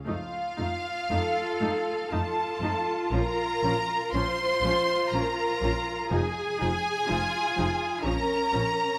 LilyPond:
<<
  \new Staff \with { instrumentName = "Violin section" } { \time 3/4 \key f \phrygian \tempo 4 = 60 f''2 a''4 | bes''4 c'''4 bes''4 | aes''2 bes''4 | }
  \new Staff \with { instrumentName = "Violin section" } { \time 3/4 \key f \phrygian f'2 a'4 | bes'4 c''4 bes'4 | aes'2 bes'4 | }
  \new Staff \with { instrumentName = "Cello section" } { \time 3/4 \key f \phrygian r4 a'4 f'4~ | f'4 f'2 | aes'4 f'4 des'4 | }
  \new Staff \with { instrumentName = "Viola section" } { \time 3/4 \key f \phrygian <a ees'>8 <a ees'>8 <a ees'>8 <a ees'>8 <a ees'>8 <a ees'>8 | <f des'>8 <f des'>8 <f des'>8 <f des'>8 <f des'>8 <f des'>8 | <f ees'>8 <f ees'>8 <f ees'>8 <f ees'>8 <f des'>8 <f des'>8 | }
  \new Staff \with { instrumentName = "Double bass section" } { \clef bass \time 3/4 \key f \phrygian f,8 f,8 f,8 f,8 f,8 f,8 | bes,,8 bes,,8 bes,,8 bes,,8 bes,,8 bes,,8 | f,,8 f,,8 f,,8 f,,8 bes,,8 bes,,8 | }
>>